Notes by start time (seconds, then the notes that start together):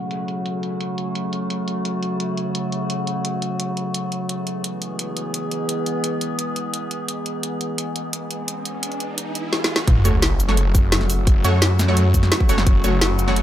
Already playing: C#3 F#3 A3 F#4
0.11 closed hi-hat
0.28 closed hi-hat
0.46 closed hi-hat
0.63 closed hi-hat
0.81 closed hi-hat
0.98 closed hi-hat
1.15 closed hi-hat
1.33 closed hi-hat
1.50 closed hi-hat
1.68 closed hi-hat
1.85 closed hi-hat
2.03 closed hi-hat
2.20 closed hi-hat
2.37 closed hi-hat
2.55 closed hi-hat
2.72 closed hi-hat
2.90 closed hi-hat
3.07 closed hi-hat
3.25 closed hi-hat
3.42 closed hi-hat
3.60 closed hi-hat
3.77 closed hi-hat
3.94 closed hi-hat
4.12 closed hi-hat
4.29 E3 G#3 B3 G#4, closed hi-hat
4.47 closed hi-hat
4.64 closed hi-hat
4.82 closed hi-hat
4.99 closed hi-hat
5.17 closed hi-hat
5.34 closed hi-hat
5.51 closed hi-hat
5.69 closed hi-hat
5.86 closed hi-hat
6.04 closed hi-hat
6.21 closed hi-hat
6.39 closed hi-hat
6.56 closed hi-hat
6.74 closed hi-hat
6.91 closed hi-hat
7.08 closed hi-hat, riser
7.26 closed hi-hat
7.43 closed hi-hat
7.61 closed hi-hat
7.78 closed hi-hat
7.96 closed hi-hat
8.13 closed hi-hat
8.31 closed hi-hat
8.48 closed hi-hat
8.65 closed hi-hat
8.83 closed hi-hat
8.92 closed hi-hat
9.00 closed hi-hat
9.18 closed hi-hat
9.35 closed hi-hat
9.53 snare
9.64 snare
9.76 snare
9.87 F#1 C#3 F#3 A3 F#4, kick, closed hi-hat, sub drop
10.05 F#1 A3 F#4 C#5, closed hi-hat, shaker
10.22 snare, closed hi-hat
10.40 closed hi-hat, shaker
10.48 A3 F#4 C#5, snare
10.57 closed hi-hat
10.75 kick, closed hi-hat, shaker
10.92 snare, closed hi-hat
11.01 snare
11.10 open hi-hat, shaker
11.27 kick, closed hi-hat
11.44 F#2 A3 F#4 C#5, closed hi-hat, shaker
11.62 snare, closed hi-hat
11.79 snare, closed hi-hat, shaker
11.88 A3 F#4 C#5
11.97 F#2, closed hi-hat
12.14 kick, closed hi-hat, shaker
12.23 snare
12.32 snare, closed hi-hat
12.40 kick
12.49 F#1 A3 F#4 C#5, open hi-hat, shaker
12.58 snare
12.67 F#1, kick, closed hi-hat
12.84 F#1 A3 F#4 C#5, closed hi-hat, shaker
13.01 snare, closed hi-hat
13.19 closed hi-hat, shaker
13.28 A3 F#4 C#5, snare
13.36 closed hi-hat